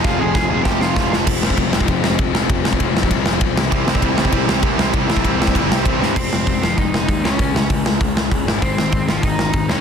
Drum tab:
CC |----------------|x---------------|----------------|----------------|
RD |----------------|----x---x---x---|x---x---x---x---|x---x---x---x---|
HH |----------------|----------------|----------------|----------------|
SD |o---o---o-o-o-o-|--o---o---o---o-|--o---o---o---o-|--o---o---o---o-|
BD |o---o---o---o---|o--oo--oo---o---|o--oo--oo---o---|o--oo--oo---o---|

CC |----------------|x---------------|----------------|----------------|
RD |x---x---x---x---|----------------|----------------|----------------|
HH |----------------|----o---o---o---|o---o---o---o---|o---o---o---o---|
SD |--o---o---o---o-|--o---o---o---o-|--o---o---o---o-|--o---o---o---o-|
BD |o--oo--oo---o---|o---o---o---o---|o---o---o---o---|o---o---o---o---|